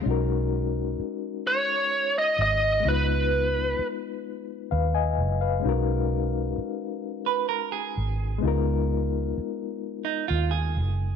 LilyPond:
<<
  \new Staff \with { instrumentName = "Lead electric guitar" } { \time 6/8 \key b \lydian \tempo 4. = 43 r4. cis''8. dis''16 dis''8 | b'4 r2 | r2. | r2. | }
  \new Staff \with { instrumentName = "Clean electric guitar" } { \time 6/8 \key b \lydian r2. | r2. | r4. r16 b'16 ais'16 gis'8. | r4. r16 dis'16 eis'16 gis'8. | }
  \new Staff \with { instrumentName = "Reed electric piano" } { \time 6/8 \key b \lydian << { r2. | r2 <b' eis''>16 <dis'' gis''>8 <b' eis''>16~ | <b' eis''>16 r2 r8. | r2. | } \\ { <gis cis' dis' fis' ais'>2. | <gis b dis' eis' b'>2. | <gis cis' dis' fis' ais'>2. | <gis b dis' eis' ais'>2. | } >> }
  \new Staff \with { instrumentName = "Fingered electric bass" } { \clef bass \time 6/8 \key b \lydian b,,4 r4. gis,,8 | cis,4 r4 dis,8 fis,,8 | b,,4 r4. gis,,8 | cis,4 r4 dis,8 fis,,8 | }
>>